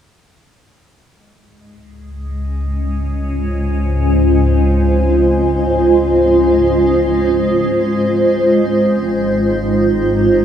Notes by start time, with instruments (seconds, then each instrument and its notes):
1.08 synth drone C#2, ambient pad G#3
1.90 ambient pad C#4
2.79 ambient pad F4
3.13 ambient pad C5
8.25 synth drone G#1
8.81 ambient pad D#4
9.29 ambient pad G4